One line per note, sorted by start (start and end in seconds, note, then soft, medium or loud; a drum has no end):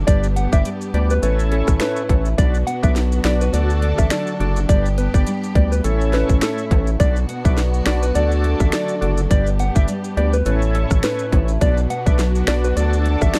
0.00 0.14 D3 medium
0.00 0.14 F#3 medium
0.00 0.14 A3 medium
0.00 0.14 D4 medium
0.00 1.19 D4 medium
0.07 0.47 G1 loud
0.07 1.23 G2 medium
0.07 1.22 B3 medium
0.07 0.27 D4 medium
0.07 1.22 G4 medium
0.07 0.27 G4 medium
0.07 0.27 B4 medium
0.07 0.21 D5 loud
0.07 0.28 D5 loud
0.07 kick loud
0.07 closed hi-hat medium
0.07 maracas medium
0.23 maracas medium
0.36 0.93 B3 medium
0.36 0.50 F#5 medium
0.36 closed hi-hat medium
0.36 maracas medium
0.52 0.64 G1 medium
0.52 0.70 D4 medium
0.52 0.70 G4 medium
0.52 0.70 B4 medium
0.52 0.70 D5 medium
0.52 0.64 E5 medium
0.52 kick loud
0.52 maracas medium
0.65 1.29 G3 medium
0.65 closed hi-hat medium
0.65 maracas medium
0.81 maracas medium
0.94 1.19 D2 loud
0.94 1.29 B3 medium
0.94 1.14 D4 medium
0.94 1.14 G4 medium
0.94 1.14 B4 medium
0.94 1.14 D5 medium
0.94 1.08 D5 medium
0.94 closed hi-hat soft
1.10 1.22 B4 medium
1.10 maracas medium
1.22 1.63 A1 loud
1.22 2.38 A2 medium
1.22 2.37 A3 medium
1.22 2.03 C#4 medium
1.22 2.37 C#4 medium
1.22 2.03 E4 medium
1.22 2.37 E4 medium
1.22 2.03 A4 medium
1.22 1.37 B4 medium
1.22 2.03 C#5 loud
1.22 closed hi-hat medium
1.22 maracas medium
1.39 maracas medium
1.52 2.45 C#4 medium
1.52 1.66 A4 medium
1.52 closed hi-hat medium
1.68 1.79 A1 loud
1.68 kick medium
1.68 cross-stick medium
1.68 maracas medium
1.80 2.45 A3 medium
1.80 2.23 B4 medium
1.80 finger snap loud
1.80 snare loud
1.80 closed hi-hat medium
1.80 maracas medium
1.96 maracas medium
2.09 2.35 A1 medium
2.09 2.29 C#4 medium
2.09 2.29 E4 medium
2.09 2.45 E4 medium
2.09 2.29 A4 medium
2.09 2.29 C#5 medium
2.09 kick medium
2.09 closed hi-hat medium
2.09 high timbale medium
2.25 maracas medium
2.38 2.64 B1 loud
2.38 3.53 B2 medium
2.38 3.52 B3 medium
2.38 2.58 D4 loud
2.38 5.81 D4 medium
2.38 2.58 F#4 medium
2.38 4.67 F#4 loud
2.38 2.58 B4 medium
2.38 2.52 D5 loud
2.38 2.58 D5 loud
2.38 kick loud
2.38 closed hi-hat medium
2.38 maracas medium
2.55 maracas medium
2.67 3.23 B3 medium
2.67 2.81 F#5 medium
2.67 closed hi-hat medium
2.67 maracas medium
2.83 3.20 B1 loud
2.83 3.00 D4 medium
2.83 3.00 F#4 medium
2.83 3.01 B4 medium
2.83 3.01 D5 medium
2.83 2.94 E5 medium
2.83 kick loud
2.83 maracas medium
2.96 3.60 F#3 medium
2.96 snare medium
2.96 closed hi-hat medium
2.96 maracas medium
3.12 maracas medium
3.24 3.50 B1 loud
3.24 3.60 B3 medium
3.24 3.44 D4 medium
3.24 3.45 F#4 medium
3.24 3.45 B4 medium
3.24 3.39 D5 medium
3.24 3.45 D5 medium
3.24 finger snap loud
3.24 snare loud
3.24 closed hi-hat soft
3.41 3.52 B4 medium
3.41 maracas medium
3.53 3.93 D2 loud
3.53 4.68 D3 medium
3.53 4.76 D3 medium
3.53 4.34 D4 loud
3.53 4.34 F#4 medium
3.53 4.68 A4 medium
3.53 4.34 A4 medium
3.53 3.68 D5 medium
3.53 4.34 D5 loud
3.53 closed hi-hat medium
3.53 maracas medium
3.70 maracas medium
3.82 4.76 A3 medium
3.82 closed hi-hat medium
3.98 4.10 A1 loud
3.98 4.10 E5 medium
3.98 kick medium
3.98 cross-stick medium
3.98 maracas medium
4.10 4.76 F#3 medium
4.10 4.54 D5 medium
4.10 finger snap loud
4.10 snare loud
4.10 closed hi-hat medium
4.10 maracas medium
4.27 maracas soft
4.40 4.66 F#1 loud
4.40 4.60 D4 medium
4.40 4.76 D4 medium
4.40 4.60 F#4 medium
4.40 4.60 A4 medium
4.40 4.60 D5 medium
4.40 closed hi-hat medium
4.56 maracas medium
4.69 5.09 G1 loud
4.69 5.84 G2 medium
4.69 5.84 B3 medium
4.69 4.89 D4 loud
4.69 4.89 G4 medium
4.69 5.83 G4 medium
4.69 4.89 B4 medium
4.69 4.83 D5 loud
4.69 4.89 D5 loud
4.69 kick loud
4.69 closed hi-hat medium
4.69 maracas medium
4.86 maracas medium
4.98 5.55 B3 medium
4.98 5.12 B4 medium
4.98 closed hi-hat medium
4.98 maracas medium
5.14 5.25 G1 medium
5.14 5.31 D4 medium
5.14 5.32 G4 medium
5.14 5.32 B4 medium
5.14 5.25 D5 medium
5.14 5.32 D5 medium
5.14 kick loud
5.14 maracas medium
5.27 5.91 G3 medium
5.27 closed hi-hat medium
5.27 maracas medium
5.43 maracas medium
5.55 5.81 D2 loud
5.55 5.91 B3 medium
5.55 5.75 D4 medium
5.55 5.76 G4 medium
5.55 5.76 B4 medium
5.55 5.70 D5 medium
5.55 5.76 D5 medium
5.55 kick loud
5.55 closed hi-hat soft
5.72 5.83 B4 medium
5.72 maracas medium
5.84 6.24 A1 loud
5.84 7.00 A2 medium
5.84 6.99 A3 medium
5.84 6.99 C#4 medium
5.84 6.65 C#4 loud
5.84 6.98 E4 medium
5.84 6.65 E4 medium
5.84 5.99 A4 medium
5.84 6.65 A4 medium
5.84 6.65 C#5 loud
5.84 closed hi-hat medium
5.84 maracas medium
6.01 maracas medium
6.13 7.06 C#4 medium
6.13 6.28 B4 medium
6.13 snare medium
6.13 closed hi-hat medium
6.29 6.41 A1 loud
6.29 kick medium
6.29 maracas medium
6.41 7.06 A3 medium
6.41 6.85 A4 medium
6.41 finger snap loud
6.41 snare loud
6.41 closed hi-hat medium
6.41 maracas medium
6.58 maracas soft
6.71 6.96 A1 medium
6.71 6.91 C#4 medium
6.71 6.91 E4 medium
6.71 7.06 E4 medium
6.71 6.91 A4 medium
6.71 6.91 C#5 medium
6.71 kick medium
6.71 closed hi-hat medium
6.71 high timbale medium
6.87 maracas medium
7.00 7.25 B1 loud
7.00 8.15 B2 medium
7.00 8.14 B3 medium
7.00 7.20 D4 medium
7.00 10.43 D4 medium
7.00 9.28 F#4 medium
7.00 7.20 F#4 medium
7.00 7.20 B4 medium
7.00 7.14 D5 loud
7.00 7.20 D5 loud
7.00 kick loud
7.00 closed hi-hat medium
7.00 maracas medium
7.16 maracas medium
7.29 7.85 B3 medium
7.29 7.43 F#5 medium
7.29 closed hi-hat medium
7.29 maracas medium
7.45 7.82 B1 medium
7.45 7.62 D4 medium
7.45 7.62 F#4 medium
7.45 7.62 B4 medium
7.45 7.62 D5 medium
7.45 7.56 E5 medium
7.45 kick loud
7.45 maracas medium
7.57 8.22 F#3 medium
7.57 snare medium
7.57 closed hi-hat medium
7.57 maracas medium
7.74 maracas medium
7.86 8.12 B1 loud
7.86 8.22 B3 medium
7.86 8.06 D4 medium
7.86 8.06 F#4 medium
7.86 8.06 B4 medium
7.86 8.06 D5 medium
7.86 8.01 D5 medium
7.86 finger snap medium
7.86 snare loud
7.86 closed hi-hat soft
8.03 8.14 B4 medium
8.03 maracas medium
8.15 8.55 D2 loud
8.15 9.29 D3 medium
8.15 9.37 D3 medium
8.15 8.95 D4 medium
8.15 8.96 F#4 medium
8.15 8.96 A4 medium
8.15 9.29 A4 medium
8.15 8.96 D5 loud
8.15 8.30 D5 medium
8.15 closed hi-hat medium
8.15 maracas medium
8.32 maracas soft
8.44 9.37 A3 medium
8.44 closed hi-hat medium
8.60 8.72 A1 medium
8.60 8.72 E5 medium
8.60 kick medium
8.60 cross-stick medium
8.60 maracas medium
8.72 9.37 F#3 medium
8.72 9.15 D5 medium
8.72 finger snap loud
8.72 snare loud
8.72 closed hi-hat medium
8.72 maracas medium
8.88 maracas soft
9.01 9.27 F#1 loud
9.01 9.21 D4 medium
9.01 9.37 D4 medium
9.01 9.21 F#4 medium
9.01 9.22 A4 medium
9.01 9.22 D5 medium
9.01 closed hi-hat medium
9.17 maracas medium
9.30 9.70 G1 loud
9.30 10.46 G2 medium
9.30 10.45 B3 medium
9.30 9.50 D4 loud
9.30 9.50 G4 medium
9.30 10.45 G4 medium
9.30 9.50 B4 medium
9.30 9.50 D5 loud
9.30 9.45 D5 loud
9.30 kick loud
9.30 closed hi-hat medium
9.30 maracas medium
9.47 maracas medium
9.59 10.16 B3 medium
9.59 9.74 F#5 medium
9.59 closed hi-hat medium
9.59 maracas medium
9.75 9.87 G1 medium
9.75 9.93 D4 medium
9.75 9.93 G4 medium
9.75 9.93 B4 medium
9.75 9.93 D5 medium
9.75 9.87 E5 medium
9.75 kick loud
9.75 maracas medium
9.88 10.53 G3 medium
9.88 closed hi-hat medium
9.88 maracas medium
10.04 maracas medium
10.17 10.43 D2 loud
10.17 10.53 B3 medium
10.17 10.37 D4 medium
10.17 10.37 G4 medium
10.17 10.37 B4 medium
10.17 10.31 D5 medium
10.17 10.37 D5 medium
10.17 closed hi-hat soft
10.33 10.45 B4 medium
10.33 maracas medium
10.46 10.86 A1 loud
10.46 11.61 A2 medium
10.46 11.60 A3 medium
10.46 11.26 C#4 loud
10.46 11.60 C#4 medium
10.46 11.26 E4 medium
10.46 11.60 E4 medium
10.46 11.26 A4 medium
10.46 10.60 B4 medium
10.46 11.27 C#5 loud
10.46 closed hi-hat medium
10.46 maracas medium
10.62 maracas medium
10.75 11.68 C#4 medium
10.75 10.89 A4 medium
10.75 closed hi-hat medium
10.91 11.02 A1 loud
10.91 kick medium
10.91 cross-stick medium
10.91 maracas medium
11.03 11.68 A3 medium
11.03 11.46 B4 medium
11.03 finger snap loud
11.03 snare loud
11.03 closed hi-hat medium
11.03 maracas medium
11.19 maracas medium
11.32 11.58 A1 medium
11.32 11.52 C#4 medium
11.32 11.52 E4 medium
11.32 11.68 E4 medium
11.32 11.52 A4 medium
11.32 11.52 C#5 medium
11.32 kick medium
11.32 closed hi-hat medium
11.32 high timbale medium
11.48 maracas medium
11.61 11.87 B1 loud
11.61 12.76 B2 medium
11.61 12.76 B3 medium
11.61 11.81 D4 medium
11.61 13.39 D4 medium
11.61 11.81 F#4 medium
11.61 13.39 F#4 loud
11.61 11.81 B4 medium
11.61 11.75 D5 loud
11.61 11.81 D5 loud
11.61 kick loud
11.61 closed hi-hat medium
11.61 maracas medium
11.77 maracas medium
11.90 12.47 B3 medium
11.90 12.04 F#5 medium
11.90 closed hi-hat medium
11.90 maracas medium
12.06 12.43 B1 loud
12.06 12.24 D4 medium
12.06 12.24 F#4 medium
12.06 12.24 B4 medium
12.06 12.24 D5 medium
12.06 12.18 E5 medium
12.06 kick loud
12.06 maracas medium
12.19 12.83 F#3 medium
12.19 snare medium
12.19 closed hi-hat medium
12.19 maracas medium
12.35 maracas medium
12.47 12.73 B1 medium
12.47 12.83 B3 medium
12.47 12.68 D4 medium
12.47 12.68 F#4 medium
12.47 12.68 B4 medium
12.47 12.62 D5 medium
12.47 12.68 D5 medium
12.47 finger snap loud
12.47 snare loud
12.47 closed hi-hat soft
12.64 12.75 B4 medium
12.64 maracas medium
12.77 13.17 D2 loud
12.77 13.39 D3 medium
12.77 13.39 D4 loud
12.77 13.39 F#4 medium
12.77 13.39 A4 medium
12.77 12.91 D5 medium
12.77 13.39 D5 loud
12.77 closed hi-hat medium
12.77 maracas medium
12.93 maracas medium
13.06 13.39 A3 medium
13.06 closed hi-hat medium
13.21 13.33 A1 loud
13.21 13.33 E5 medium
13.21 kick medium
13.21 cross-stick medium
13.21 maracas medium
13.34 13.39 F#3 medium
13.34 13.39 D5 medium
13.34 finger snap loud
13.34 snare loud
13.34 closed hi-hat medium
13.34 maracas medium